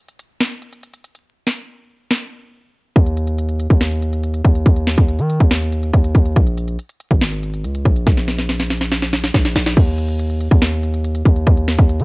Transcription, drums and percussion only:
0.08 closed hi-hat soft
0.19 closed hi-hat medium
0.40 snare loud
0.40 closed hi-hat loud
0.51 closed hi-hat medium
0.62 closed hi-hat medium
0.73 closed hi-hat medium
0.83 closed hi-hat medium
0.94 closed hi-hat medium
1.04 closed hi-hat medium
1.15 closed hi-hat soft
1.47 snare medium
2.11 snare loud
2.96 kick loud
2.96 closed hi-hat medium
3.06 closed hi-hat medium
3.17 closed hi-hat medium
3.27 closed hi-hat medium
3.38 closed hi-hat medium
3.49 closed hi-hat soft
3.60 closed hi-hat medium
3.70 kick medium
3.81 snare loud
3.81 closed hi-hat medium
3.92 closed hi-hat medium
4.02 closed hi-hat medium
4.13 closed hi-hat medium
4.24 closed hi-hat medium
4.34 closed hi-hat medium
4.45 kick loud
4.45 closed hi-hat medium
4.55 closed hi-hat soft
4.66 kick loud
4.66 closed hi-hat medium
4.76 closed hi-hat medium
4.87 snare loud
4.87 closed hi-hat medium
4.97 kick loud
4.97 closed hi-hat medium
5.09 closed hi-hat medium
5.19 closed hi-hat soft
5.30 closed hi-hat medium
5.41 kick medium
5.51 snare loud
5.51 closed hi-hat loud
5.62 closed hi-hat medium
5.73 closed hi-hat medium
5.83 closed hi-hat medium
5.94 kick medium
5.94 closed hi-hat medium
6.04 closed hi-hat medium
6.15 kick medium
6.15 closed hi-hat medium
6.26 closed hi-hat soft
6.36 kick loud
6.36 closed hi-hat medium
6.47 closed hi-hat medium
6.57 closed hi-hat medium
6.68 closed hi-hat medium
6.79 closed hi-hat medium
6.89 closed hi-hat soft
7.00 closed hi-hat medium
7.11 kick medium
7.21 snare loud
7.21 closed hi-hat loud
7.32 closed hi-hat medium
7.43 closed hi-hat medium
7.54 closed hi-hat medium
7.64 closed hi-hat medium
7.75 closed hi-hat medium
7.85 kick loud
7.85 closed hi-hat medium
7.96 closed hi-hat soft
8.06 kick loud
8.06 snare medium
8.06 closed hi-hat medium
8.17 snare medium
8.17 closed hi-hat medium
8.28 snare medium
8.28 closed hi-hat medium
8.38 snare medium
8.38 closed hi-hat medium
8.49 snare medium
8.49 closed hi-hat medium
8.60 snare medium
8.60 closed hi-hat soft
8.70 snare medium
8.70 closed hi-hat medium
8.70 open hi-hat medium
8.78 snare medium
8.78 closed hi-hat medium
8.85 closed hi-hat medium
8.92 snare medium
8.92 closed hi-hat loud
9.02 snare medium
9.02 closed hi-hat medium
9.13 snare medium
9.13 closed hi-hat medium
9.24 snare medium
9.24 closed hi-hat medium
9.34 kick medium
9.34 snare loud
9.34 closed hi-hat medium
9.45 snare medium
9.45 closed hi-hat medium
9.56 snare loud
9.56 closed hi-hat medium
9.66 snare medium
9.77 kick loud
9.77 closed hi-hat medium
9.77 crash loud
9.87 closed hi-hat medium
9.98 closed hi-hat medium
10.08 closed hi-hat medium
10.19 closed hi-hat medium
10.30 closed hi-hat soft
10.41 closed hi-hat medium
10.51 kick loud
10.62 snare loud
10.62 closed hi-hat loud
10.73 closed hi-hat medium
10.83 closed hi-hat medium
10.94 closed hi-hat medium
11.05 closed hi-hat medium
11.15 closed hi-hat medium
11.26 kick loud
11.26 closed hi-hat medium
11.36 closed hi-hat soft
11.47 kick loud
11.47 closed hi-hat medium
11.57 closed hi-hat medium
11.68 snare loud
11.68 closed hi-hat medium
11.78 kick loud
11.78 closed hi-hat medium
11.89 closed hi-hat medium
12.00 closed hi-hat soft

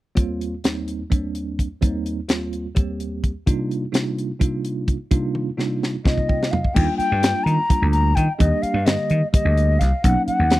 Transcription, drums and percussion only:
0.17 kick medium
0.17 closed hi-hat medium
0.41 closed hi-hat soft
0.64 snare medium
0.64 closed hi-hat medium
0.88 closed hi-hat soft
1.12 kick medium
1.12 closed hi-hat medium
1.35 closed hi-hat medium
1.59 kick medium
1.59 closed hi-hat soft
1.82 kick medium
1.82 closed hi-hat medium
2.06 closed hi-hat soft
2.29 snare medium
2.29 closed hi-hat medium
2.53 closed hi-hat soft
2.76 kick medium
2.76 closed hi-hat medium
3.00 closed hi-hat soft
3.24 kick medium
3.24 closed hi-hat soft
3.47 kick medium
3.47 closed hi-hat medium
3.71 closed hi-hat soft
3.94 snare medium
3.94 closed hi-hat medium
4.18 closed hi-hat soft
4.41 kick medium
4.41 closed hi-hat medium
4.65 closed hi-hat medium
4.88 kick medium
4.88 closed hi-hat soft
5.11 kick medium
5.11 closed hi-hat medium
5.35 high tom soft
5.59 snare soft
5.83 snare soft
6.05 kick medium
6.05 snare medium
6.18 kick medium
6.29 kick medium
6.43 snare medium
6.53 floor tom medium
6.64 kick medium
6.76 kick medium
6.76 crash medium
7.00 closed hi-hat soft
7.23 snare loud
7.23 closed hi-hat medium
7.47 closed hi-hat medium
7.70 kick medium
7.70 closed hi-hat medium
7.93 closed hi-hat medium
8.17 kick medium
8.17 closed hi-hat medium
8.40 kick loud
8.40 closed hi-hat medium
8.63 closed hi-hat medium
8.86 snare loud
8.86 closed hi-hat medium
9.10 closed hi-hat medium
9.34 kick medium
9.34 closed hi-hat medium
9.57 closed hi-hat medium
9.81 kick medium
9.81 snare soft
9.81 closed hi-hat medium
10.04 kick loud
10.04 closed hi-hat medium
10.28 closed hi-hat soft
10.50 snare medium
10.50 closed hi-hat medium

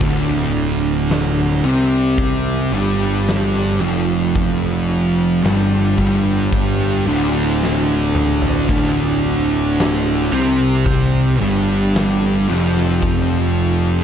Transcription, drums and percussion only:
0.00 kick loud
0.00 open hi-hat medium
0.55 open hi-hat medium
1.09 snare loud
1.09 open hi-hat medium
1.63 open hi-hat medium
2.18 kick loud
2.18 open hi-hat medium
2.72 open hi-hat medium
3.27 snare loud
3.27 open hi-hat medium
3.81 open hi-hat medium
4.35 kick loud
4.35 open hi-hat medium
4.89 open hi-hat medium
5.44 snare loud
5.44 open hi-hat medium
5.98 kick medium
5.98 open hi-hat medium
6.52 kick loud
6.52 open hi-hat medium
7.07 open hi-hat medium
7.63 snare medium
8.15 mid tom medium
8.42 floor tom medium
8.69 kick loud
8.69 open hi-hat medium
9.23 open hi-hat medium
9.78 snare loud
9.78 open hi-hat medium
10.32 open hi-hat medium
10.86 kick loud
10.86 open hi-hat medium
11.40 open hi-hat medium
11.94 snare loud
11.94 open hi-hat medium
12.49 open hi-hat medium
12.78 snare soft
13.02 kick loud
13.02 open hi-hat medium
13.56 open hi-hat medium

